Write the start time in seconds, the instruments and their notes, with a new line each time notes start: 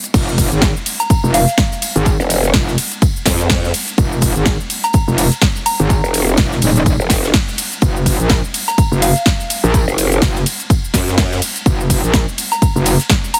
0.04 closed hi-hat, shaker
0.14 wobble bass F1, kick, closed hi-hat, crash, ride, tambourine, shaker
0.29 shaker
0.38 kick, open hi-hat, ride, tambourine, shaker
0.52 wobble bass G#1, closed hi-hat, shaker
0.62 kick, snare, closed hi-hat, ride, tambourine, shaker
0.77 shaker
0.86 open hi-hat, ride, tambourine, shaker
1.00 synth bell A#5, closed hi-hat, shaker
1.10 kick, closed hi-hat, ride, tambourine, shaker
1.24 wobble bass F1, shaker
1.34 synth bell F5, open hi-hat, ride, tambourine, shaker
1.48 closed hi-hat, shaker
1.58 kick, snare, closed hi-hat, ride, tambourine, shaker
1.72 closed hi-hat, shaker
1.82 open hi-hat, ride, tambourine, shaker
1.96 wobble bass G#1, closed hi-hat, shaker
2.06 kick, closed hi-hat, ride, tambourine, shaker
2.20 wobble bass F1, closed hi-hat, shaker
2.30 open hi-hat, ride, tambourine, shaker
2.44 closed hi-hat, shaker
2.54 wobble bass F1, kick, snare, closed hi-hat, ride, tambourine, shaker
2.68 snare, shaker
2.78 open hi-hat, ride, tambourine, shaker
2.92 closed hi-hat, shaker
3.02 kick, closed hi-hat, ride, tambourine, shaker
3.16 shaker
3.26 wobble bass F2, kick, snare, open hi-hat, ride, tambourine, shaker
3.39 snare, closed hi-hat, shaker
3.50 kick, snare, closed hi-hat, open hi-hat, ride, shaker
3.64 snare, shaker
3.74 open hi-hat, ride, tambourine, shaker
3.88 closed hi-hat, shaker
3.98 wobble bass F1, kick, closed hi-hat, ride, tambourine, shaker
4.12 shaker
4.21 kick, open hi-hat, ride, tambourine, shaker
4.36 wobble bass G#1, closed hi-hat, shaker
4.46 kick, snare, closed hi-hat, ride, tambourine, shaker
4.60 shaker
4.70 open hi-hat, ride, tambourine, shaker
4.84 synth bell A#5, closed hi-hat, shaker
4.93 kick, closed hi-hat, ride, tambourine, shaker
5.08 wobble bass F1, shaker
5.18 open hi-hat, ride, tambourine, shaker
5.32 closed hi-hat, shaker
5.42 kick, snare, closed hi-hat, ride, tambourine, shaker
5.55 closed hi-hat, shaker
5.66 synth bell A#5, open hi-hat, ride, tambourine, shaker
5.80 wobble bass G#1, closed hi-hat, shaker
5.90 kick, closed hi-hat, ride, tambourine, shaker
6.04 wobble bass F1, closed hi-hat, shaker
6.14 open hi-hat, ride, tambourine, shaker
6.28 closed hi-hat, shaker
6.37 wobble bass F1, kick, snare, closed hi-hat, ride, tambourine, shaker
6.52 snare, shaker
6.62 wobble bass D#1, open hi-hat, ride, tambourine, shaker
6.76 closed hi-hat, shaker
6.86 kick, closed hi-hat, ride, tambourine, shaker
7.00 wobble bass F1, shaker
7.10 kick, snare, open hi-hat, ride, tambourine, shaker
7.24 snare, closed hi-hat, shaker
7.34 kick, snare, closed hi-hat, open hi-hat, ride, shaker
7.47 snare, shaker
7.58 open hi-hat, ride, tambourine, shaker
7.72 closed hi-hat, shaker
7.82 wobble bass F#1, kick, closed hi-hat, ride, tambourine, shaker
7.97 shaker
8.06 kick, open hi-hat, ride, tambourine, shaker
8.20 wobble bass A#1, closed hi-hat, shaker
8.29 kick, snare, closed hi-hat, ride, tambourine, shaker
8.45 shaker
8.54 open hi-hat, ride, tambourine, shaker
8.68 synth bell A#5, closed hi-hat, shaker
8.78 kick, closed hi-hat, ride, tambourine, shaker
8.92 wobble bass F#1, shaker
9.02 synth bell F5, open hi-hat, ride, tambourine, shaker
9.16 closed hi-hat, shaker
9.26 kick, snare, closed hi-hat, ride, tambourine, shaker
9.40 closed hi-hat, shaker
9.50 open hi-hat, ride, tambourine, shaker
9.64 wobble bass A#1, closed hi-hat, shaker
9.74 kick, closed hi-hat, ride, tambourine, shaker
9.88 wobble bass F#1, closed hi-hat, shaker
9.98 open hi-hat, ride, tambourine, shaker
10.12 closed hi-hat, shaker
10.22 wobble bass F#1, kick, snare, closed hi-hat, ride, tambourine, shaker
10.35 snare, shaker
10.46 open hi-hat, ride, tambourine, shaker
10.60 closed hi-hat, shaker
10.70 kick, closed hi-hat, ride, tambourine, shaker
10.85 shaker
10.94 wobble bass F#2, kick, snare, open hi-hat, ride, tambourine, shaker
11.08 snare, closed hi-hat, shaker
11.18 kick, snare, closed hi-hat, open hi-hat, ride, shaker
11.32 snare, shaker
11.42 open hi-hat, ride, tambourine, shaker
11.56 closed hi-hat, shaker
11.66 wobble bass F#1, kick, closed hi-hat, ride, tambourine, shaker
11.80 shaker
11.90 kick, open hi-hat, ride, tambourine, shaker
12.04 wobble bass A#1, closed hi-hat, shaker
12.14 kick, snare, closed hi-hat, ride, tambourine, shaker
12.29 shaker
12.38 open hi-hat, ride, tambourine, shaker
12.52 synth bell A#5, closed hi-hat, shaker
12.62 kick, closed hi-hat, ride, tambourine, shaker
12.76 wobble bass F#1, shaker
12.85 open hi-hat, ride, tambourine, shaker
13.00 closed hi-hat, shaker
13.10 kick, snare, closed hi-hat, ride, tambourine, shaker
13.24 closed hi-hat, shaker
13.34 synth bell A#5, open hi-hat, ride, tambourine, shaker